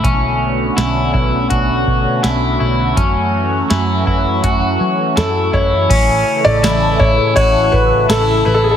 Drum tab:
CC |--------|--------|x-------|
RD |--------|--------|x-x-x-x-|
HH |x-x-x-x-|x-x-x-x-|--------|
TB |--------|--------|--x---x-|
SD |--o---o-|--o---o-|--o---o-|
BD |o--ooo--|o--oo--o|o--ooo--|